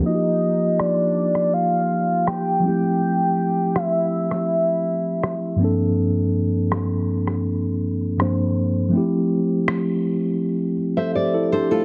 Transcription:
<<
  \new Staff \with { instrumentName = "Soft synth lead" } { \time 4/4 \key f \major \tempo 4 = 81 ees''4 d''4 f''4 g''4~ | g''4 e''2~ e''8 r8 | r1 | r1 | }
  \new Staff \with { instrumentName = "Nylon-string guitar" } { \time 4/4 \key f \major r1 | r1 | r1 | r2 r8. <c'' e''>16 d''8 <a' c''>16 <f' a'>16 | }
  \new Staff \with { instrumentName = "Tine electric piano" } { \time 4/4 \key f \major << { r1 | r1 | r1 | r2 r8. <a' e''>16 <g' c''>16 <e' a'>16 <d' g'>16 <a e'>16 | } \\ { <f bes ees' f' ges' g'>2.~ <f bes ees' f' ges' g'>8 <f g a c' e' g'>8~ | <f g a c' e' g'>2.~ <f g a c' e' g'>8 <g, f bes c' d' a'>8~ | <g, f bes c' d' a'>2. <g, f bes c' d' c''>4 | <f a c' e' g'>1 | } >> }
  \new DrumStaff \with { instrumentName = "Drums" } \drummode { \time 4/4 r4 ss8. ss16 r4 ss4 | r4 ss8. ss16 r4 ss4 | r4 ss8. ss16 r4 ss4 | r4 ss4 r4 r4 | }
>>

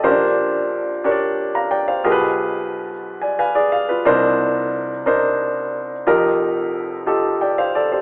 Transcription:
<<
  \new Staff \with { instrumentName = "Grand piano" } { \time 6/8 \key bes \major \tempo 4. = 60 << { <a' ees''>16 r2 <f'' bes''>16 <d'' g''>16 <c'' f''>16~ | <c'' f''>16 r4. <d'' aes''>16 <b' f'' aes''>16 <aes' d''>16 f''16 <f' b'>16~ | <f' b'>16 r2 r8. | r2 <d'' g''>16 <c'' f''>16 <a' d''>16 <g' c''>16 | } \\ { <des' d' g' bes' c''>4~ <des' d' g' bes' c''>16 r16 <d' g' bes' des'' d''>4~ <d' g' bes' des'' d''>16 r16 | <f' g' aes' bes' b'>4~ <f' g' aes' bes' b'>16 r4. r16 | <d' ees' bes' c''>4~ <d' ees' bes' c''>16 r16 <d' ees' bes' c''>4~ <d' ees' bes' c''>16 r16 | <ees' f' g' bes'>4~ <ees' f' g' bes'>16 r16 <ees' f' g' a'>4~ <ees' f' g' a'>16 r16 | } >> }
  \new Staff \with { instrumentName = "Grand piano" } { \clef bass \time 6/8 \key bes \major <bes,, bes,>2. | <b,, b,>2. | <c, c>2. | <f,, f,>2. | }
>>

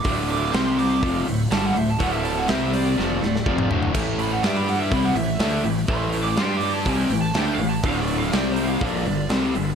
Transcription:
<<
  \new Staff \with { instrumentName = "Lead electric guitar" } { \time 4/4 \key a \dorian \tempo 4 = 123 d'''8 d'''8 c'''8 d'''4 r8 a''16 fis''16 e''16 a''16 | fis''16 e''16 a''16 fis''16 e''8 d''2 r8 | r8 b''16 fis''16 e''16 b''16 fis''16 e''16 b''16 fis''16 e''8 e''8 r8 | \tuplet 3/2 { c'''8 r8 d'''8 c'''8 d'''8 a''8 gis''8 g''8 a''8 g''8 f''8 a''8 } |
\tuplet 3/2 { f''8 d''8 f''8 d''8 c''8 f''8 } d''4 r4 | }
  \new Staff \with { instrumentName = "Tonewheel organ" } { \time 4/4 \key a \dorian <e' fis' c''>8 <e' fis' c''>8 <c' g' c''>8 <c' g' c''>8 <e' fis' c''>8 <e' fis' c''>8 <e' fis' d''>8 <e' fis' c''>8 | <e' fis' a'>8 <e' fis' c''>8 <c' g' c''>8 <c' g' d''>8 <e' fis' c''>8 <e' fis' c''>8 <e' fis' c''>8 <e' fis' c''>8 | <cis' g' b'>8 <cis' g' a'>8 <d' g' d''>8 <d' g' a'>8 <cis' g' b'>8 <cis' g' b'>8 <cis' g' b'>8 <cis' g' b'>8 | <cis' g' a'>8 <cis' g' b'>8 <d' g' d''>8 <d' g' d''>8 <cis' g' b'>8 <cis' g' b'>8 <cis' g' b'>8 <cis' g' b'>8 |
<e' fis' c''>8 <e' fis' a'>8 <c' g' c''>8 <c' g' c''>8 <f' a' b'>8 <f' a' b'>8 <f' a' b'>8 <f' a' b'>8 | }
  \new Staff \with { instrumentName = "Distorted electric guitar" } { \clef bass \time 4/4 \key a \dorian <d, a, d>4 <c g c'>4 <f, c f>8 <d, a,>8 <g, d g>8 <d, a,>8 | <d, a, d>4 <c g c'>4 <f, c f>8 <d, a,>8 <f, c f>8 <d, a, d>8 | <a, e a>4 <g d' g'>4 <c g c'>8 <a, e>8 <d a d'>8 <a, e>8 | <a, e a>4 <g d' g'>4 <c g c'>8 <a, e>8 <d a d'>8 <a, e>8 |
<d, a, d>4 <c g c'>4 <bes, f bes>8 <g, d>8 <c g c'>8 <g, d>8 | }
  \new Staff \with { instrumentName = "Fingered electric bass" } { \clef bass \time 4/4 \key a \dorian d,,4 c,4 f,,8 d,,8 g,,8 d,,8 | d,,4 c,4 f,,8 d,,8 f,,8 d,,8 | a,,4 g,4 c,8 a,,8 d,8 a,,8 | a,,4 g,4 c,8 a,,8 d,8 a,,8 |
d,,4 c,4 bes,,8 g,,8 c,8 g,,8 | }
  \new DrumStaff \with { instrumentName = "Drums" } \drummode { \time 4/4 <hho bd>8 hho8 <hho sn>8 hho8 <hho bd>8 hho8 <hho sn>8 hho8 | <hho bd>8 hho8 <hho sn>8 hho8 sn16 tommh16 sn16 sn16 bd16 toml16 tomfh16 tomfh16 | <cymc bd>8 hho8 <hho sn>8 hho8 <hho bd>8 hho8 <hho sn>8 hho8 | <hho bd>8 hho8 <hho sn>8 hho8 <hho bd>8 hho8 <hho sn>8 hho8 |
<hho bd>8 hho8 <hho sn>8 hho8 <hho bd>8 hho8 <hho sn>8 hho8 | }
>>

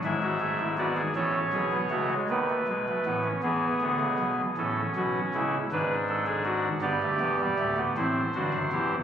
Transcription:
<<
  \new Staff \with { instrumentName = "Pipe organ" } { \time 6/8 \key b \minor \tempo 4. = 53 << { e''4 d''8 cis''4. | r2. | r2. | \key g \major d''4. c''4. | } \\ { e'16 fis'16 gis'16 e'16 fis'16 gis'16 a'8 gis'8 fis'8 | b'4. gis'4. | a'8 fis'8 e'8 b'8 a'16 gis'16 fis'8 | g'4. e'8 fis'8 g'8 | } >> }
  \new Staff \with { instrumentName = "Pipe organ" } { \clef bass \time 6/8 \key b \minor << { gis8 a8 b8 cis'8. b16 a16 gis16 | b16 a16 gis16 a16 b16 cis'16 b4. | cis'4. d'4. | \key g \major b16 a16 b16 g16 a16 b16 c'8 d'8 e'8 | } \\ { <gis,, gis,>4. <a,, a,>8 <b,, b,>8 <cis, cis>8 | <dis, dis>8 <b,, b,>8 <a,, a,>8 <e, e>8 <d, d>16 <cis, cis>16 <b,, b,>8 | <a,, a,>8 <b,, b,>8 <cis, cis>8 <gis,, gis,>4. | <g,, g,>8 <e,, e,>8 <d,, d,>8 <a,, a,>8 <g,, g,>16 <fis,, fis,>16 <e,, e,>8 | } >> }
>>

